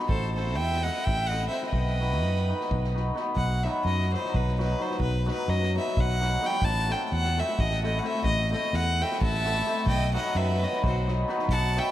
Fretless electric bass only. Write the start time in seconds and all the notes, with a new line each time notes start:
0.09 A1
0.59 E2
1.07 A1
1.74 B1
2.23 F#2
2.71 B1
3.37 B1
3.85 F#2
4.34 B1
5.00 B1
5.48 F#2
5.97 B1
6.63 A1
7.12 E2
7.60 A1
8.24 A1
8.73 E2
9.22 A1
9.86 B1
10.35 F#2
10.84 B1
11.48 B1